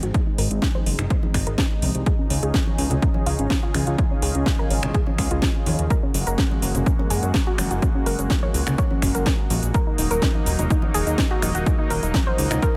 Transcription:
Already playing: G#3 C4 D#4
0.03 G#1 F#4, closed hi-hat
0.14 D#4, kick, closed hi-hat
0.27 D#4
0.38 G#1 A#4, open hi-hat
0.51 G#1 D#4, closed hi-hat
0.62 D#4, kick, snare, closed hi-hat
0.75 C5, high conga
0.86 F#1 D#4, open hi-hat
0.99 F#1 D#4, finger snap, closed hi-hat, low conga
1.10 C5, kick, closed hi-hat
1.23 D#4, high conga
1.34 G#1 D#4, finger snap, kick, open hi-hat
1.47 G#1 A#4, closed hi-hat
1.58 kick, snare, closed hi-hat
1.82 C2, open hi-hat, high conga
1.95 C2, closed hi-hat
2.06 C#3 C#4 F4 G#4, kick, closed hi-hat
2.19 C#4
2.30 C#2 C#4, open hi-hat
2.43 C#2 G#4, closed hi-hat
2.54 C#4, kick, snare, closed hi-hat
2.67 C#4, high conga
2.78 C#2, open hi-hat
2.90 C#2 C#4, closed hi-hat, low conga
3.02 C#4, kick, closed hi-hat
3.14 C#4, high conga
3.26 C#2 F4, open hi-hat
3.39 G#1 C#4, closed hi-hat
3.50 C#4, kick, snare, closed hi-hat
3.63 F4
3.74 C#2 C#4, finger snap, open hi-hat, high conga
3.87 C#2 F4, closed hi-hat
3.98 C#4, kick, closed hi-hat
4.11 C#4
4.22 C#2 G#4, open hi-hat
4.35 C#2 C#4, closed hi-hat
4.46 C#4, kick, snare, closed hi-hat
4.59 A#4, high conga
4.70 G#1 C#4, open hi-hat
4.83 G#1 C#4, finger snap, low conga
4.94 G#4, kick, closed hi-hat
5.07 C#4, high conga
5.18 C#2 C#4, finger snap, kick, open hi-hat
5.31 C#2 F4, closed hi-hat
5.42 kick, snare, closed hi-hat
5.66 D#2, open hi-hat, high conga
5.79 D#2, closed hi-hat
5.90 G#3 A#3 F#4 A#4, kick, closed hi-hat, shaker
6.03 C#4
6.14 F#1 C#4, open hi-hat, shaker
6.27 F#1 A#4, closed hi-hat, shaker
6.38 C#4, kick, snare, closed hi-hat, shaker
6.51 C#4, high conga
6.62 F#1, open hi-hat, shaker
6.74 F#1 C#4, closed hi-hat, low conga, shaker
6.86 C#4, kick, closed hi-hat, shaker
6.99 C#4, high conga
7.10 F#1 G#4, open hi-hat, shaker
7.23 F#2 C#4, closed hi-hat, shaker
7.34 C#4, kick, snare, closed hi-hat, shaker
7.47 F#4
7.58 F#1 C#4, finger snap, open hi-hat, high conga, shaker
7.71 F#1 F#4, closed hi-hat, shaker
7.82 C#4, kick, closed hi-hat, shaker
7.95 C#4
8.06 F#1 A#4, open hi-hat, shaker
8.19 F#1 C#4, closed hi-hat, shaker
8.30 C#4, kick, snare, closed hi-hat, shaker
8.43 C#5, high conga
8.54 C#2 C#4, open hi-hat, shaker
8.67 C#2 C#4, finger snap, closed hi-hat, low conga, shaker
8.78 C#5, kick, closed hi-hat, shaker
8.91 C#4, high conga
9.02 F#1 C#4, finger snap, kick, open hi-hat, shaker
9.15 F#1 A#4, closed hi-hat, shaker
9.26 kick, snare, closed hi-hat, shaker
9.50 A#1, open hi-hat, high conga, shaker
9.63 A#1, closed hi-hat, shaker
9.74 F#3 A#3 D#4 A#4, kick, closed hi-hat, shaker
9.87 D#4
9.98 D#1 D#4, open hi-hat, shaker
10.11 D#1 A#4, closed hi-hat, shaker
10.22 D#4, kick, snare, closed hi-hat, shaker
10.34 D#4, high conga
10.46 D#1, open hi-hat, shaker
10.59 D#1 D#4, closed hi-hat, low conga, shaker
10.70 D#4, kick, closed hi-hat, shaker
10.82 D#4, high conga
10.94 D#1 G#4, open hi-hat, shaker
11.07 D#2 D#4, closed hi-hat, shaker
11.18 D#4, kick, snare, closed hi-hat, shaker
11.31 F#4
11.42 D#1 D#4, finger snap, open hi-hat, high conga, shaker
11.55 D#1 F#4, closed hi-hat, shaker
11.66 D#4, kick, closed hi-hat, shaker
11.79 D#4
11.90 D#1 A#4, open hi-hat, shaker
12.03 D#1 D#4, closed hi-hat, shaker
12.14 D#4, kick, snare, closed hi-hat, shaker
12.26 C5, high conga
12.38 C#2 D#4, open hi-hat, shaker
12.51 C#2 D#4, finger snap, closed hi-hat, low conga, shaker
12.62 A#4, kick, closed hi-hat, shaker

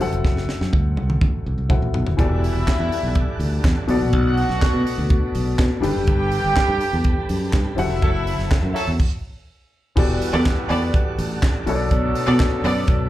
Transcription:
0.00 F#3 C4 E4 A4 F#5, open hi-hat
0.12 F1, closed hi-hat
0.24 F#1, kick, snare
0.37 snare
0.49 snare
0.61 F#2, snare
0.73 D2, kick, high tom
0.97 C2, high tom
1.10 mid tom
1.21 A1, kick, mid tom
1.46 C2
1.58 C2
1.69 F#3 C4 E4 A4 F#5, kick, mid tom
1.82 A1
1.94 B1, floor tom
2.07 D#1, floor tom
2.17 E1 E3 G3 B3 D4 E4 F#4 G4 A4 D5 E5 F#5, kick, closed hi-hat
2.44 open hi-hat
2.55 E1
2.68 kick, snare, clap, closed hi-hat
2.79 E2
2.92 open hi-hat
3.03 B1
3.15 kick, closed hi-hat
3.39 D2, open hi-hat
3.64 E2, kick, snare, clap, closed hi-hat
3.87 B1 B2 A3 B3 F#4 A4 D5 F#5, open hi-hat
4.00 A#1
4.13 B1, kick, closed hi-hat
4.37 open hi-hat
4.49 B1, snare
4.62 muted fingered electric bass stroke, kick, snare, clap, closed hi-hat
4.74 B2
4.87 open hi-hat
4.98 D2
5.10 kick, closed hi-hat
5.35 B1, open hi-hat
5.58 B2, kick, snare, clap, closed hi-hat
5.81 G1 G3 D4 G4 A4 B4 G5, open hi-hat
5.96 F#1
6.07 G1, kick, closed hi-hat
6.32 open hi-hat
6.44 G1
6.56 muted fingered electric bass stroke, kick, snare, clap, closed hi-hat
6.69 G2
6.81 open hi-hat
6.93 E2
7.04 kick, closed hi-hat
7.29 F#2, open hi-hat
7.53 G2, kick, snare, clap, closed hi-hat
7.76 F#1 F#3 C4 E4 G4 E5 F#5, open hi-hat
7.84 A4
7.90 F1
8.02 F#1 F#3 E4 A4, kick, closed hi-hat
8.27 open hi-hat
8.39 F#1, snare
8.51 muted fingered electric bass stroke, kick, snare, clap, closed hi-hat
8.63 F#2
8.74 F#3 E4 A4, open hi-hat
8.87 E2
9.00 kick, crash
9.96 E1 E3 G3 B3 D4 F#4 G4 A4 B4 D5 F#5, kick, crash
10.22 open hi-hat
10.33 E2 B3 A4 D5
10.46 kick, snare, clap, closed hi-hat
10.69 E2 B3 A4 D5, open hi-hat
10.94 kick, closed hi-hat
11.18 A1, open hi-hat
11.42 kick, snare, clap, closed hi-hat
11.66 B1 B2 F#3 A3 B3 D4 F#4 A4 C#5, open hi-hat
11.75 D5
11.91 B1, kick, closed hi-hat
12.15 open hi-hat
12.26 B2 B3 A4 D5
12.40 kick, snare, clap, closed hi-hat
12.63 F#2 B3 A4 D5, open hi-hat
12.87 B1, kick, closed hi-hat

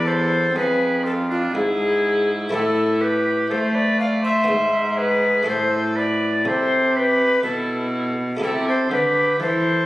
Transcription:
Already playing: E2 B3 D4 E4
0.04 A4 C5
0.54 F2 G#4 B4
1.04 F4 A4
1.29 D4 F4
1.53 G#2 E4 G#4
2.50 A2 A3 C4 E4 A4
2.54 A2
3.01 G4 B4
3.50 A3 A4 C5
3.74 B4 D5
3.99 D5 F5
4.22 C5 E5
4.44 B3 E4
4.48 G#2
4.97 G#4 B4
5.43 A2 A3 E4 A4
5.47 A2 A4 C5
5.97 B4 D5
6.45 C3 A4 C5
6.95 G4 B4
7.43 B2 E4 A4
8.37 A3 E4 A4
8.41 C3 E4 A4
8.67 A4 C5
8.90 D3 G4 B4
9.39 E3 A4 C5

